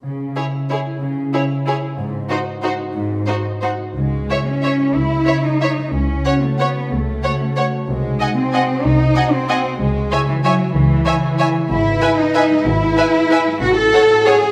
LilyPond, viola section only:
\new Staff \with { instrumentName = "Viola section" } { \time 3/4 \key cis \minor \tempo 4 = 185 r4 e'4 e'4 | r4 e'4 e'4 | r4 dis'4 dis'4 | r4 dis'4 dis'4 |
r4 cis''4 cis''4 | r4 cis''4 cis''4 | r4 cis''4 cis''4 | r4 cis''4 cis''4 |
r4 dis''4 dis''4 | r4 dis''4 dis''4 | r4 cis''4 cis''4 | r4 cis''4 cis''4 |
\key e \major r4 b'4 b'4 | r4 b'4 b'4 | r4 a'4 a'4 | }